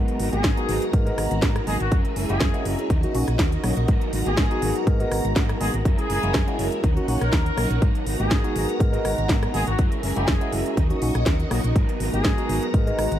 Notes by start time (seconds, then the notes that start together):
Already playing: F#3 G#3 B3 D#4 F#4 A#4 A#5
0.08 closed hi-hat
0.19 G#1 F#3 B3 D#4 A#4, open hi-hat
0.32 G#1 G#3 A#3 B3 D#4 F#4 G#4 A#4, closed hi-hat
0.44 G#2 F#3 B3 D#4 A#4, kick, snare, closed hi-hat
0.57 G#3 B3 D#4 F#4 A#4, closed hi-hat
0.68 G#1 F#3 B3 D#4 A#4, open hi-hat
0.82 closed hi-hat
0.93 G#2 G#3 A#3 B3 D#4 A#4, kick, closed hi-hat
1.06 G#3 B3 D#4 F#4 A#4, closed hi-hat
1.18 G#1, cross-stick, open hi-hat
1.31 G#1, closed hi-hat
1.42 G#2 F#3 B3 D#4 A#4, kick, snare, closed hi-hat
1.55 B3 D#4 A#4, cross-stick, closed hi-hat
1.66 G#1 F#3 G#3 A#3 B3 D#4 G#4 A#4, open hi-hat
1.79 G#1 B3 D#4 F#4 A#4, closed hi-hat
1.91 F#2 G#3 C#4 E4 G#4 A#4 E5, kick, closed hi-hat
2.05 closed hi-hat
2.16 F#1 G#3 C#4 E4 A#4, open hi-hat
2.29 F#1 G#3 A#3 C#4 E4 F#4 G#4 A#4, closed hi-hat
2.40 F#2 G#3 C#4 E4 A#4, kick, snare, closed hi-hat
2.54 G#3 A#3 C#4 E4 F#4, closed hi-hat
2.65 F#1 G#3 C#4 E4 A#4, open hi-hat
2.78 C#4 E4 A#4, closed hi-hat
2.90 D#2 F#3 C#4 D#4 F#4 A#4 D#5 C#6, kick, closed hi-hat
3.02 F#3 A#3 C#4 D#4 F#4 A#4, muted fingered electric bass stroke, closed hi-hat
3.14 A#1 F#3 A#3 C#4 D#4 F#4, open hi-hat
3.28 A#1, cross-stick, closed hi-hat
3.39 D#2 F#3 C#4 D#4 A#4, kick, snare, closed hi-hat
3.52 C#4 D#4 A#4, closed hi-hat
3.63 A#1 F#3 A#3 C#4 D#4 F#4 A#4, cross-stick, open hi-hat
3.76 A#1 C#4 D#4 A#4, closed hi-hat
3.88 G#2 F#3 B3 D#4 A#4 A#5, kick, closed hi-hat
4.01 closed hi-hat
4.12 G#1 F#3 B3 D#4 A#4, open hi-hat
4.25 G#1 G#3 A#3 B3 D#4 F#4 G#4 A#4, closed hi-hat
4.37 G#2 F#3 B3 D#4 A#4, kick, snare, closed hi-hat
4.51 G#3 B3 D#4 F#4 A#4, closed hi-hat
4.61 G#1 F#3 B3 D#4 A#4, open hi-hat
4.76 closed hi-hat
4.87 G#2 G#3 A#3 B3 D#4 A#4, kick, closed hi-hat
4.99 G#3 B3 D#4 F#4 A#4, closed hi-hat
5.11 G#1, cross-stick, open hi-hat
5.25 G#1, closed hi-hat
5.35 G#2 F#3 B3 D#4 A#4, kick, snare, closed hi-hat
5.49 cross-stick, closed hi-hat
5.60 G#1 F#3 G#3 A#3 B3 D#4 G#4 A#4, open hi-hat
5.73 G#1 B3 D#4 A#4, closed hi-hat
5.84 F#2 G#3 C#4 E4 A#4 G#5, kick, closed hi-hat
5.98 G#4, closed hi-hat
6.09 F#1 G#3 C#4 E4 A#4, open hi-hat
6.23 F#1 G#3 A#3 C#4 E4 F#4, closed hi-hat
6.34 F#2 G#3 C#4 E4 A#4, kick, snare, closed hi-hat
6.47 G#3 A#3 C#4 E4 F#4, closed hi-hat
6.58 F#1 G#3 C#4 E4 A#4, open hi-hat
6.72 closed hi-hat
6.83 D#2 F#3 C#4 D#4 A#4 C#5 F#5, kick, closed hi-hat
6.96 F#3 A#3 C#4 D#4 F#4 A#4, muted fingered electric bass stroke, closed hi-hat
7.08 A#1 F#3 A#3 C#4 D#4 F#4, open hi-hat
7.21 A#1 A#4, cross-stick, closed hi-hat
7.32 F#3 C#4 D#4 A#4, kick, snare, closed hi-hat
7.45 C#4 D#4 A#4, closed hi-hat
7.57 A#1 F#3 A#3 C#4 D#4 F#4 A#4, cross-stick, open hi-hat
7.70 A#1 C#4 D#4 A#4, closed hi-hat
7.81 G#2 F#3 B3 D#4 F#4 A#4 A#5, kick, closed hi-hat
7.95 closed hi-hat
8.06 G#1 F#3 B3 D#4 A#4, open hi-hat
8.19 G#1 G#3 A#3 B3 D#4 F#4 G#4 A#4, closed hi-hat
8.30 G#2 F#3 B3 D#4 A#4, kick, snare, closed hi-hat
8.44 G#3 B3 D#4 F#4 A#4, closed hi-hat
8.55 G#1 F#3 B3 D#4 A#4, open hi-hat
8.68 B3 D#4 A#4, closed hi-hat
8.80 G#2 G#3 A#3 B3 D#4 A#4, kick, closed hi-hat
8.92 G#3 B3 D#4 F#4 A#4, closed hi-hat
9.05 G#1, cross-stick, open hi-hat
9.18 G#1, closed hi-hat
9.29 G#2 F#3 B3 D#4 A#4, kick, snare, closed hi-hat
9.43 cross-stick, closed hi-hat
9.53 G#1 F#3 G#3 A#3 B3 D#4 G#4 A#4, open hi-hat
9.66 G#1 B3 D#4 F#4 A#4, closed hi-hat
9.78 F#2 G#3 C#4 E4 G#4 A#4 E5, kick, closed hi-hat
9.92 closed hi-hat
10.02 F#1 G#3 C#4 E4 A#4, open hi-hat
10.15 F#1 G#3 A#3 C#4 E4 F#4 G#4 A#4, closed hi-hat
10.27 F#2 G#3 C#4 E4 A#4, kick, snare, closed hi-hat
10.41 G#3 A#3 C#4 E4 F#4, closed hi-hat
10.52 F#1 G#3 C#4 E4 A#4, open hi-hat
10.66 closed hi-hat
10.77 D#2 F#3 C#4 D#4 F#4 A#4 D#5 C#6, kick, closed hi-hat
10.90 F#3 A#3 C#4 D#4 F#4 A#4, muted fingered electric bass stroke, closed hi-hat
11.01 A#1 F#3 A#3 C#4 D#4 F#4, open hi-hat
11.15 A#1, cross-stick, closed hi-hat
11.26 D#2 F#3 C#4 D#4 A#4, kick, snare, closed hi-hat
11.39 C#4 D#4 A#4, closed hi-hat
11.50 A#1 F#3 A#3 C#4 D#4 F#4 A#4, cross-stick, open hi-hat
11.63 A#1 C#4 D#4 A#4, closed hi-hat
11.75 G#2 F#3 B3 D#4 F#4 A#4 A#5, kick, closed hi-hat
11.89 closed hi-hat
11.99 G#1 F#3 B3 D#4 A#4, open hi-hat
12.12 G#1 G#3 A#3 B3 D#4 F#4 G#4 A#4, closed hi-hat
12.24 G#2 F#3 B3 D#4 A#4, kick, snare, closed hi-hat
12.37 G#3 B3 D#4 F#4 A#4, closed hi-hat
12.48 G#1 F#3 B3 D#4 A#4, open hi-hat
12.63 closed hi-hat
12.73 G#2 G#3 A#3 B3 D#4 A#4, kick, closed hi-hat
12.86 G#3 B3 D#4 F#4 A#4, closed hi-hat
12.98 G#1, cross-stick, open hi-hat
13.12 G#1, closed hi-hat